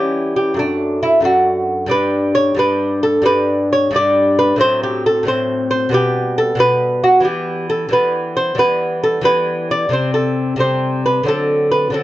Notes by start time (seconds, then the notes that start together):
Already playing: E3 G3 C#4 G4
0.36 G4
0.54 F#2 A3
0.59 D4
1.03 E4
1.20 F#2 A3 D4
1.25 F#4
1.86 G2 G3 D4
1.91 B4
2.35 C#5
2.55 G2 G3 D4
2.59 B4
3.03 A4
3.22 G2 G3 D4 B4
3.73 C#5
3.91 G2 G3 D4
3.96 D5
4.39 B4
4.56 A2 F#3 C4
4.61 C5
4.83 G4
5.06 A4
5.23 A2 F#3 C4
5.28 C5
5.71 C5
5.89 B2 G3 B3
5.94 G4
6.38 A4
6.55 B2 G3 B3
6.60 B4
7.04 F#4
7.20 E3 G3 B3
7.25 G4
7.70 A4
7.89 E3 G3 B3
7.93 B4
8.37 C5
8.55 E3 G3 B3
8.59 B4
9.03 A4
9.21 E3 G3 B3 B4
9.71 D5
9.89 C3 G3 C4
9.93 C5
10.14 A4
10.56 C3 G3 C4
10.60 C5
11.06 B4
11.23 D3 F#3 C4
11.28 A4
11.71 B4
11.90 D3 F#3 C4 A4